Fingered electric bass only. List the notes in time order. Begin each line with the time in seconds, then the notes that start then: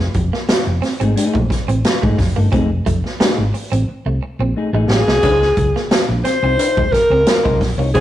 0.15 F1
0.67 F1
1.01 G#1
1.16 muted fingered electric bass stroke
1.35 A#1
1.68 A1
2.03 G#1
2.18 F1
2.36 G1
2.53 F1
2.86 F1
3.38 G#1
3.72 A1
3.88 muted fingered electric bass stroke
4.06 C2
4.39 A#1
4.73 A1
4.89 A1
5.07 C2
5.23 C#2
5.57 C#2
6.09 A#1
6.43 C2
6.77 D#2
7.10 C#2
7.45 C2
7.61 A#1
7.78 C2
7.95 C#2